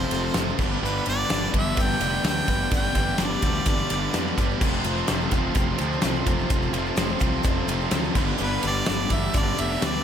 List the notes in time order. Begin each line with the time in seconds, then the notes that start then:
Already playing: F2 C3 F3 A3 C4 F4 A4 C5
0.10 F1 F2 C3 F3 A3 C4, ride, shaker
0.25 shaker
0.34 F#1 F2 C3 F3 A3 C4 F4 A4, snare, ride, shaker
0.49 shaker
0.59 G1 G2 D3 G3 B3 D4 G4 B4, kick, crash, shaker
0.72 shaker
0.83 G1 G2 D3 G3 B3 D4 B4, shaker
0.98 shaker
1.06 G1 G2 D3 G3 B3 D4 B4 D5, ride, shaker
1.21 shaker
1.29 G1 G2 D3 G3 B3 D4 B4, snare, ride, shaker
1.46 shaker
1.53 G1 G2 D3 G3 B3 D4, kick, ride
1.58 E5
1.76 G1 G2 D3 G3 B3 D4 B4, kick, ride, shaker
1.81 G5
2.00 F1 G2 D3 G3 B3 D4, ride, shaker
2.15 shaker
2.24 D2 G2 D3 G3 B3 D4, snare, ride, shaker
2.28 B4 G5
2.39 shaker
2.47 G1 G2 D3 G3 B3 D4 B4, kick, ride, shaker
2.63 shaker
2.70 G1 G2 D3 G3 B3 D4, kick, ride, shaker
2.74 B4 G5
2.86 shaker
2.95 G1 G2 D3 G3 B3 D4 B4, kick, ride, shaker
3.08 shaker
3.18 G1 G2 D3 G3 B3 D4 B4, snare, ride, shaker
3.24 D5
3.42 D2 G2 D3 G3 B3 D4, kick, ride, shaker
3.54 shaker
3.66 G1 G2 D3 G3 B3 D4 B4, kick, ride, shaker
3.78 shaker
3.90 G1 G2 D3 G3 B3 D4, ride, shaker
4.14 F2 G2 D3 G3 B3 D4 B4, snare, ride, shaker
4.27 shaker
4.38 G1 G2 D3 G3 B3 D4 B4, kick, ride, shaker
4.51 shaker
4.61 F1 F2 C3 F3 A3 C4 F4 A4 C5, kick, crash, shaker
4.74 shaker
4.83 F1 F2 C3 F3 A3 C4 F4 A4, ride, shaker
4.97 shaker
5.07 F1 F2 C3 F3 A3 C4 F4 A4, snare, ride, shaker
5.21 shaker
5.31 F1 F2 C3 F3 A3 C4, kick, ride, shaker
5.55 F1 F2 C3 F3 A3 C4 F4 A4, kick, ride, shaker
5.78 D2 F2 C3 F3 A3 C4, ride, shaker
5.93 shaker
6.02 C2 F2 C3 F3 A3 C4 F4 A4, snare, ride, shaker
6.15 shaker
6.25 F1 F2 C3 F3 A3 C4, kick, ride, shaker
6.39 shaker
6.49 F1 F2 C3 F3 A3 C4 F4 A4, kick, ride, shaker
6.62 shaker
6.72 F1 F2 C3 F3 A3 C4 F4 A4, ride, shaker
6.86 shaker
6.96 F1 F2 C3 F3 A3 C4 F4 A4, snare, ride, shaker
7.08 shaker
7.19 C2 F2 C3 F3 A3 C4 F4 A4, kick, ride, shaker
7.43 F1 F2 C3 F3 A3 C4 F4 A4, kick, ride, shaker
7.68 F1 F2 C3 F3 A3 C4, ride, shaker
7.80 shaker
7.91 D2 F2 C3 F3 A3 C4 F4 A4, snare, ride, shaker
8.04 shaker
8.15 G1 G2 D3 G3 B3 D4 G4 B4, kick, crash, shaker
8.28 shaker
8.38 G1 G2 D3 G3 B3 D4, shaker
8.43 B4
8.52 shaker
8.63 G1 G2 D3 G3 B3 D4 B4, ride, shaker
8.67 D5
8.76 shaker
8.86 G1 G2 D3 G3 B3 D4, snare, ride, shaker
8.90 B4
9.10 G1 G2 D3 G3 B3 D4 B4 E5, kick, ride, shaker
9.15 G3
9.33 G1 G2 D3 G3 B3 D4 B4, kick, ride, shaker
9.38 D5
9.57 F1 G2 D3 G3 B3 D4, ride, shaker
9.61 E5
9.72 shaker
9.81 D2 G2 D3 G3 B3 D4, snare, ride, shaker
9.85 B4 D5
9.95 shaker